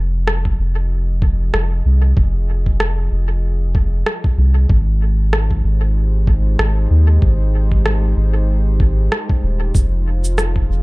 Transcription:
0.00 0.56 F1 loud
0.00 4.70 F3 medium
0.00 0.63 D#4 medium
0.00 6.58 F4 medium
0.00 0.71 C5 medium
0.00 5.76 D#5 medium
0.13 4.70 G#4 medium
0.27 cross-stick medium
0.45 kick medium
0.59 1.51 F1 medium
1.22 kick loud
1.54 1.82 F1 loud
1.54 cross-stick medium
1.85 2.14 C2 medium
2.17 3.09 F1 loud
2.17 kick loud
2.66 kick medium
2.80 cross-stick medium
3.12 4.04 F1 medium
3.75 kick loud
4.06 cross-stick medium
4.24 kick loud
4.38 4.66 C2 medium
4.69 5.62 G#1 loud
4.69 9.75 G#3 medium
4.69 kick loud
4.96 10.83 D#4 medium
4.96 9.75 G4 medium
5.23 10.83 C5 medium
5.33 cross-stick medium
5.51 kick medium
5.64 6.57 G#1 medium
6.27 kick loud
6.59 6.87 G#1 loud
6.59 cross-stick medium
6.90 7.19 D#2 loud
7.22 8.14 G#1 loud
7.22 kick loud
7.72 kick medium
7.86 cross-stick medium
8.17 9.09 G#1 medium
8.80 kick loud
9.12 cross-stick medium
9.29 kick loud
9.43 9.72 D#1 medium
9.74 10.67 F1 loud
9.74 10.83 F3 medium
9.74 kick loud
9.74 shaker soft
9.85 10.83 F4 medium
10.24 shaker soft
10.32 10.83 G#4 medium
10.38 cross-stick medium
10.38 shaker soft
10.56 kick medium
10.69 10.83 F1 medium
10.69 10.83 D#5 medium

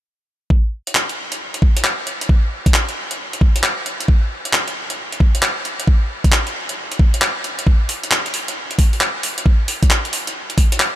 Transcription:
0.50 kick loud
0.87 closed hi-hat medium
0.95 clap loud
1.09 closed hi-hat soft
1.32 closed hi-hat medium
1.54 closed hi-hat soft
1.62 kick loud
1.77 closed hi-hat medium
1.84 clap loud
2.07 closed hi-hat medium
2.21 closed hi-hat medium
2.29 kick loud
2.66 kick loud
2.66 closed hi-hat medium
2.74 clap loud
2.89 closed hi-hat soft
3.11 closed hi-hat medium
3.33 closed hi-hat soft
3.41 kick loud
3.56 closed hi-hat medium
3.64 clap loud
3.86 closed hi-hat medium
4.00 closed hi-hat medium
4.08 kick loud
4.45 closed hi-hat medium
4.53 clap loud
4.68 closed hi-hat soft
4.90 closed hi-hat medium
5.12 closed hi-hat soft
5.20 kick loud
5.35 closed hi-hat medium
5.43 clap loud
5.65 closed hi-hat soft
5.80 closed hi-hat medium
5.87 kick loud
6.24 kick loud
6.24 closed hi-hat medium
6.32 clap loud
6.47 closed hi-hat soft
6.69 closed hi-hat medium
6.92 closed hi-hat soft
6.99 kick loud
7.14 closed hi-hat medium
7.22 clap loud
7.44 closed hi-hat soft
7.59 closed hi-hat medium
7.67 kick loud
7.89 open hi-hat medium
8.04 closed hi-hat medium
8.11 clap loud
8.26 closed hi-hat soft
8.34 open hi-hat medium
8.48 closed hi-hat medium
8.71 closed hi-hat soft
8.79 kick loud
8.79 open hi-hat loud
8.93 open hi-hat medium
9.01 clap loud
9.23 open hi-hat loud
9.38 closed hi-hat medium
9.46 kick loud
9.68 open hi-hat loud
9.83 kick medium
9.83 closed hi-hat medium
9.90 clap loud
10.05 closed hi-hat soft
10.13 open hi-hat loud
10.27 closed hi-hat medium
10.50 closed hi-hat soft
10.58 kick medium
10.58 open hi-hat loud
10.72 closed hi-hat medium
10.80 clap loud
10.80 open hi-hat medium

